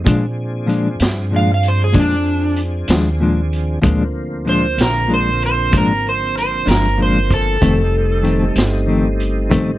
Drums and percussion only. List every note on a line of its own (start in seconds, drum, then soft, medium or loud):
0.07 kick loud
0.07 closed hi-hat medium
0.69 closed hi-hat soft
0.99 snare medium
0.99 closed hi-hat medium
1.63 closed hi-hat medium
1.93 kick medium
1.93 closed hi-hat medium
2.56 closed hi-hat medium
2.88 snare medium
2.88 closed hi-hat medium
3.53 closed hi-hat soft
3.83 kick medium
3.83 closed hi-hat medium
4.48 closed hi-hat soft
4.78 snare medium
4.78 closed hi-hat medium
5.42 closed hi-hat medium
5.73 kick medium
5.73 closed hi-hat medium
6.37 closed hi-hat medium
6.68 snare medium
6.68 closed hi-hat medium
7.31 kick medium
7.31 closed hi-hat medium
7.62 kick loud
7.62 closed hi-hat medium
8.24 closed hi-hat soft
8.55 snare medium
8.55 closed hi-hat medium
9.20 closed hi-hat soft
9.51 kick medium
9.51 closed hi-hat medium